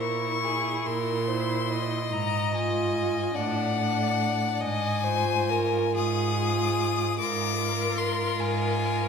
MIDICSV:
0, 0, Header, 1, 5, 480
1, 0, Start_track
1, 0, Tempo, 860832
1, 718, Tempo, 831025
1, 1198, Time_signature, 6, 3, 24, 8
1, 2638, Tempo, 886263
1, 3598, Tempo, 800000
1, 4558, Tempo, 837989
1, 5187, End_track
2, 0, Start_track
2, 0, Title_t, "Violin"
2, 0, Program_c, 0, 40
2, 2, Note_on_c, 0, 85, 90
2, 479, Note_on_c, 0, 84, 83
2, 487, Note_off_c, 0, 85, 0
2, 1202, Note_on_c, 0, 82, 93
2, 1211, Note_off_c, 0, 84, 0
2, 1446, Note_on_c, 0, 80, 91
2, 1455, Note_off_c, 0, 82, 0
2, 1912, Note_on_c, 0, 78, 96
2, 1921, Note_off_c, 0, 80, 0
2, 2640, Note_on_c, 0, 80, 114
2, 2648, Note_off_c, 0, 78, 0
2, 3367, Note_off_c, 0, 80, 0
2, 3371, Note_on_c, 0, 87, 106
2, 4069, Note_off_c, 0, 87, 0
2, 4079, Note_on_c, 0, 86, 115
2, 4554, Note_on_c, 0, 84, 95
2, 4563, Note_off_c, 0, 86, 0
2, 4796, Note_on_c, 0, 80, 95
2, 4804, Note_off_c, 0, 84, 0
2, 5187, Note_off_c, 0, 80, 0
2, 5187, End_track
3, 0, Start_track
3, 0, Title_t, "Violin"
3, 0, Program_c, 1, 40
3, 0, Note_on_c, 1, 70, 64
3, 247, Note_on_c, 1, 68, 64
3, 256, Note_off_c, 1, 70, 0
3, 480, Note_on_c, 1, 70, 73
3, 488, Note_off_c, 1, 68, 0
3, 712, Note_on_c, 1, 72, 64
3, 721, Note_off_c, 1, 70, 0
3, 955, Note_on_c, 1, 75, 78
3, 964, Note_off_c, 1, 72, 0
3, 1907, Note_on_c, 1, 74, 70
3, 1916, Note_off_c, 1, 75, 0
3, 2634, Note_on_c, 1, 75, 84
3, 2642, Note_off_c, 1, 74, 0
3, 2869, Note_on_c, 1, 72, 77
3, 2877, Note_off_c, 1, 75, 0
3, 3116, Note_on_c, 1, 70, 76
3, 3124, Note_off_c, 1, 72, 0
3, 3358, Note_off_c, 1, 70, 0
3, 3361, Note_on_c, 1, 68, 82
3, 4064, Note_off_c, 1, 68, 0
3, 4088, Note_on_c, 1, 65, 88
3, 5187, Note_off_c, 1, 65, 0
3, 5187, End_track
4, 0, Start_track
4, 0, Title_t, "Viola"
4, 0, Program_c, 2, 41
4, 0, Note_on_c, 2, 64, 57
4, 701, Note_off_c, 2, 64, 0
4, 721, Note_on_c, 2, 64, 59
4, 1190, Note_off_c, 2, 64, 0
4, 1434, Note_on_c, 2, 65, 61
4, 1902, Note_off_c, 2, 65, 0
4, 1906, Note_on_c, 2, 62, 60
4, 2144, Note_off_c, 2, 62, 0
4, 2156, Note_on_c, 2, 62, 63
4, 2629, Note_off_c, 2, 62, 0
4, 2872, Note_on_c, 2, 65, 66
4, 3581, Note_off_c, 2, 65, 0
4, 3601, Note_on_c, 2, 65, 63
4, 4075, Note_off_c, 2, 65, 0
4, 4087, Note_on_c, 2, 70, 64
4, 4313, Note_off_c, 2, 70, 0
4, 4317, Note_on_c, 2, 70, 67
4, 5018, Note_off_c, 2, 70, 0
4, 5036, Note_on_c, 2, 70, 60
4, 5187, Note_off_c, 2, 70, 0
4, 5187, End_track
5, 0, Start_track
5, 0, Title_t, "Cello"
5, 0, Program_c, 3, 42
5, 0, Note_on_c, 3, 46, 60
5, 391, Note_off_c, 3, 46, 0
5, 478, Note_on_c, 3, 46, 74
5, 1112, Note_off_c, 3, 46, 0
5, 1192, Note_on_c, 3, 44, 76
5, 1825, Note_off_c, 3, 44, 0
5, 1908, Note_on_c, 3, 45, 81
5, 2548, Note_off_c, 3, 45, 0
5, 2638, Note_on_c, 3, 44, 76
5, 3285, Note_off_c, 3, 44, 0
5, 3368, Note_on_c, 3, 44, 80
5, 3998, Note_off_c, 3, 44, 0
5, 4076, Note_on_c, 3, 44, 74
5, 4705, Note_off_c, 3, 44, 0
5, 4785, Note_on_c, 3, 44, 76
5, 5187, Note_off_c, 3, 44, 0
5, 5187, End_track
0, 0, End_of_file